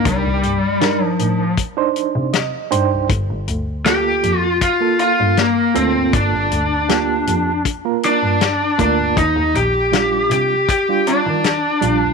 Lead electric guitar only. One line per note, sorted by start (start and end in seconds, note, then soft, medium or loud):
0.07 1.05 G3 medium
1.05 1.54 F3 medium
3.86 4.39 G4 medium
4.39 4.58 F4 medium
4.62 4.99 F4 medium
5.00 5.39 F4 medium
5.38 5.73 A#3 medium
5.76 6.15 C4 medium
6.14 7.61 D4 medium
8.05 8.80 D4 medium
8.81 9.18 D4 medium
9.18 9.53 D#4 loud
9.56 10.31 G4 loud
10.32 10.69 G4 loud
10.70 11.08 G4 loud
11.07 12.13 D4 medium